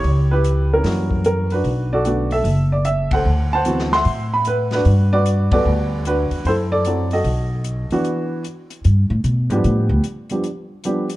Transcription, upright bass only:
X:1
M:4/4
L:1/8
Q:"Swing" 1/4=150
K:G
V:1 name="Upright bass" clef=bass
^C,,4 F,,4 | B,,,4 F,,,4 | D,,4 A,,4 | G,,3 F,, D,,3 E,, |
F,,4 B,,,3 z | z4 G,, A,, B,, _A,, | A,, D,, z6 |]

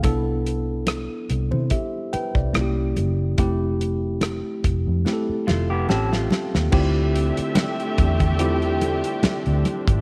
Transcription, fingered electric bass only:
X:1
M:4/4
L:1/16
Q:"Swing 16ths" 1/4=72
K:Ddor
V:1 name="Fingered electric bass" clef=bass
C,,4- C,, z C,, C, z3 C,, C,,2 ^F,,,2 | F,,,4- F,,, z F,,, F,, z2 F,,,2 A,,,2 z _E,, | D,,3 z3 E,,4- E,, z2 D,, z ^G,,, |]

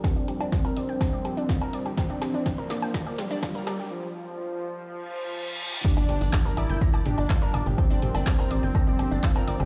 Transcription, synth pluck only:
X:1
M:4/4
L:1/16
Q:1/4=124
K:Gm
V:1 name="Synth pluck"
G D G D G B d g b d G D F B d G | G D G D G B d g b d G D F B d G | z16 | G D G D G B d g b d G D F B d G |
G D G D G B d g b d G D F B d G |]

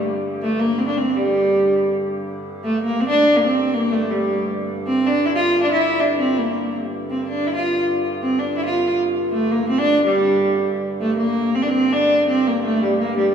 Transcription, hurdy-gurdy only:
X:1
M:3/4
L:1/8
Q:1/4=162
K:Gm
V:1 name="Hurdy-gurdy" clef=bass
[G,,D,]6- | [G,,D,]6 | [G,,D,]6- | [G,,D,]6- |
[G,,D,]6- | [G,,D,]6 | [G,,D,]6- | [G,,D,]6- |
[G,,D,]6- | [G,,D,]6 | [G,,D,]6- | [G,,D,]6 |]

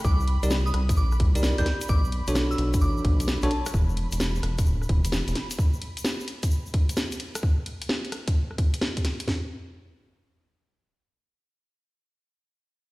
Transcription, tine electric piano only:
X:1
M:4/4
L:1/16
Q:"Swing 16ths" 1/4=130
K:Edor
V:1 name="Tine electric piano"
z3 [_EG_Bd] z6 z [EGBd]2 [EGBd] z2 | z3 [DFAc]8- [DFAc]2 [DFAc] z2 | z16 | z16 |
z16 | z16 | z16 |]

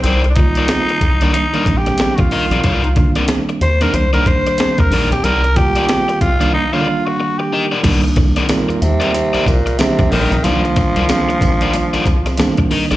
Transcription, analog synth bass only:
X:1
M:4/4
L:1/16
Q:"Swing 16ths" 1/4=92
K:Cm
V:1 name="Analog synth bass" clef=bass
C,,3 z3 C,,2 z2 B,,,2 B,,, B,,, z =B,,, | C,,3 z3 E,,2 C,,2 z3 E,, B,,, =B,,, | C,,3 z3 C,,2 z8 | C,,2 C,, z2 E,, E,, z2 C,, C,, z2 B,,, B,,, =B,,, |
C,, z2 C,, z2 B,,,2 z C,, C,, z C,, C,, z =B,,, |]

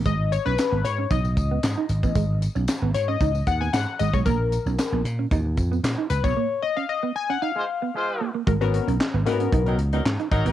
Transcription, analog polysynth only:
X:1
M:4/4
L:1/16
Q:1/4=114
K:G#dor
V:1 name="Analog polysynth"
d2 c B3 c2 d8- | d2 z4 c d3 f g f2 d c | A6 z8 B c- | c2 d e d2 g f e6 z2 |
[FA] [B,CFA]2 z3 [A,B,CFA]4 z6 |]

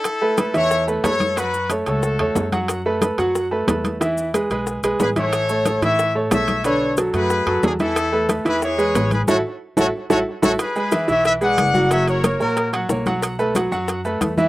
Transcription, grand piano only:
X:1
M:4/4
L:1/8
Q:1/4=182
K:A
V:1 name="Grand piano"
z [A,AB] [A,AB] [E,Ee]2 [A,AB] [A,AB]2 | [F,Ff]2 [A,Ac] [A,Ac]2 [A,Ac]2 [F,Ff]- | [F,Ff] [A,AB] [A,AB] [F,Ff]2 [A,AB] [A,AB]2 | [E,Ee]2 [G,GB] [G,GB]2 [G,GB]2 [E,Ee]- |
[E,Ee] [A,Ac] [A,Ac] [E,Ee]2 [A,Ac] [A,Ac]2 | [D,DB]2 [F,FA] [F,A,F]2 [F,FA]2 [E,Ee]- | [E,Ee] [A,AB] [A,AB] [E,Ee]2 [G,GB] [G,GB]2 | [EFA] z2 [EFA] z [EFA] z [EFA] |
z [G,GB] [E,Ee] [E,Ee]2 [G,GB]2 [F,Ff] | [F,Ff]2 [^A,^Ac] [A,Ac]2 [F,Ff] [A,Ac] [F,Ff]- | [F,Ff] [A,AB] [F,Ff] [F,Ff]2 [A,AB]2 [E,Ee] |]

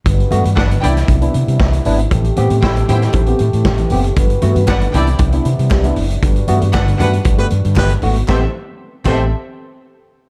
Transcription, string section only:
X:1
M:4/4
L:1/16
Q:1/4=117
K:Ador
V:1 name="String section"
z4 [DBf] z [Edg]2 z8 | z4 [Ecg] z [Ecg]2 z8 | z4 [DBf] z [Edg]2 z8 | z4 [DBf] z [DBf]2 z8 |
[CAe]2 z4 [CAe]2 z8 |]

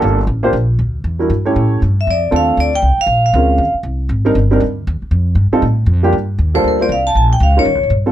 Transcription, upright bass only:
X:1
M:4/4
L:1/8
Q:"Swing" 1/4=236
K:Fmix
V:1 name="Upright bass" clef=bass
G,,,2 A,,,2 B,,,2 D,,2 | =E,,2 G,,2 A,,2 G,,2 | F,,2 E,,2 D,,2 C,, z | B,,,2 _D,,2 E,, z C,,2 |
_A,,,2 G,,,2 D,,2 E,, z | F,,2 G,, z A,,2 F,,2 | [K:Gm] G,,2 E,,2 D,,2 C,,2 | B,,,2 _D,,2 (3E,, D,, B,,, G,,2 |]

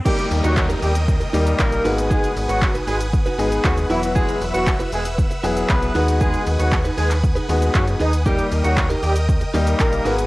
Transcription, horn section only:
X:1
M:4/4
L:1/16
Q:1/4=117
K:D#phr
V:1 name="Horn section"
[=G,=G]2 z [F,F]2 z [G,G] z4 z [A,A]3 z | [G,G]2 z [F,F]2 z [G,G] z4 z [F,F] z [E,E] z | [G,G]2 z [F,F]2 z [G,G] z4 z [B,B]3 z | [G,G]2 z [F,F]2 z [G,G] z4 z [F,F] z [Dd] z |
[=G,=G]2 z [F,F]2 z [G,G] z4 z [A,A]3 z |]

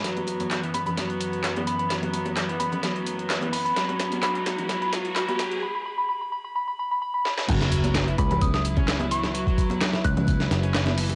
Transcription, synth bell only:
X:1
M:4/4
L:1/16
Q:1/4=129
K:F#mix
V:1 name="Synth bell"
z6 b b z6 b b | z6 b b z6 b b | b b z2 b b z2 b b z2 b b z2 | b b b b b b b b b b b b b b b b |
z6 b b d' d' z4 c'2- | c'4 z2 f'3 z6 z |]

